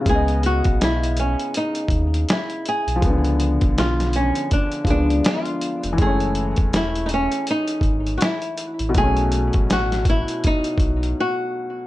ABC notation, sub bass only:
X:1
M:4/4
L:1/16
Q:"Swing 16ths" 1/4=81
K:C#m
V:1 name="Sub bass" clef=bass
C,,3 B,,,4 z3 D,,2 z3 B,,, | C,,3 B,,,4 z3 C,,2 z3 ^E,,, | F,,,3 E,,,4 z3 G,,,2 z3 A,,, | B,,,3 A,,,4 z3 B,,,2 z4 |]